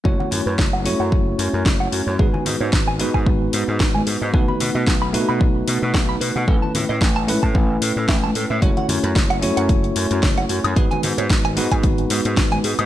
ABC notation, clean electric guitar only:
X:1
M:4/4
L:1/16
Q:"Swing 16ths" 1/4=112
K:F#dor
V:1 name="Clean electric guitar"
F f z B z f z f z4 C f F c | G g z c z g z g z4 D g G d | B b z d z b z b z4 F b B f | A a z d z a z a z4 E a A e |
F f z B z f z f z4 C f F c | G g z c z g z g z4 D g G d |]